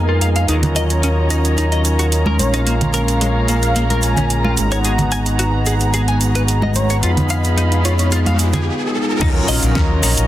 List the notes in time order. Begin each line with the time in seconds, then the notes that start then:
Already playing: F2 G#3 B3 D#4 F4 G#4 A#4 D#5 F5 G#5
0.09 F4
0.21 F5, closed hi-hat
0.36 F5, closed hi-hat
0.48 D#2 F#3 C#4 D#4 F4 A#4 C#5 D#5 A#5, closed hi-hat, shaker
0.63 closed hi-hat, low conga
0.76 D#5, closed hi-hat, shaker
0.90 closed hi-hat, shaker
1.03 C#4, closed hi-hat, shaker
1.30 D#4, closed hi-hat, shaker
1.45 closed hi-hat, shaker
1.57 D#4, closed hi-hat, shaker
1.72 D#5, closed hi-hat
1.85 closed hi-hat, shaker
1.99 F#4, closed hi-hat, shaker
2.12 closed hi-hat, shaker
2.26 A#4, high conga
2.39 A#1 G#3 A#3 C#4 F4 G#4 A#4 C#5 F5, closed hi-hat, high conga, shaker
2.53 D#4, closed hi-hat, shaker
2.67 A#3, closed hi-hat, shaker
2.81 closed hi-hat, low conga
2.93 A#4, closed hi-hat, shaker
3.08 closed hi-hat, shaker
3.21 G#3, closed hi-hat, shaker
3.48 A#3, closed hi-hat, shaker
3.62 F5, closed hi-hat, shaker
3.75 A#3, closed hi-hat, shaker
3.90 A#4, closed hi-hat, high conga
4.02 G#5, closed hi-hat, shaker
4.16 C#4, closed hi-hat, low conga, shaker
4.30 closed hi-hat, shaker
4.44 F4, high conga
4.56 G#1 G#3 B3 D#4 F#4 G#4 F#5 A#5, closed hi-hat, shaker
4.71 C#5, closed hi-hat, shaker
4.84 G#4, closed hi-hat, riser, shaker
4.98 closed hi-hat, low conga
5.11 G#5, closed hi-hat, shaker
5.26 closed hi-hat, shaker
5.39 F#4, closed hi-hat, shaker
5.66 G#4, closed hi-hat, shaker
5.80 closed hi-hat, shaker
5.93 G#4, closed hi-hat, shaker
6.08 G#5, closed hi-hat
6.21 closed hi-hat, shaker
6.35 B4, closed hi-hat, shaker
6.48 closed hi-hat, shaker
6.62 D#5, high conga
6.74 C#5, closed hi-hat, high conga, shaker
6.90 C#5, closed hi-hat, shaker
7.02 F2 G#3 B3 D#4 F4 G#4 D#5 F5 B5, closed hi-hat, shaker
7.17 closed hi-hat, low conga
7.29 F5, closed hi-hat, shaker
7.44 closed hi-hat, shaker
7.58 D#4, closed hi-hat, shaker
7.72 closed hi-hat
7.85 F4 C#5, closed hi-hat, shaker
7.98 C#5, closed hi-hat, shaker
8.11 F4, closed hi-hat, shaker
8.26 F5, closed hi-hat, high conga
8.39 closed hi-hat, shaker
8.53 G#4, closed hi-hat, low conga, shaker
9.20 D#2 F#3 C#4 D#4 F4 A#4 C#5 D#5 A#5, kick, closed hi-hat, crash, impact, shaker
9.48 A#1 D#5, open hi-hat, shaker
9.63 A#1, closed hi-hat, shaker
9.75 D#2 C#4, kick, snare, closed hi-hat, shaker
10.03 A#1 D#4, open hi-hat, shaker
10.17 A#1 F#3 C#4 D#4 F4 A#4, closed hi-hat, shaker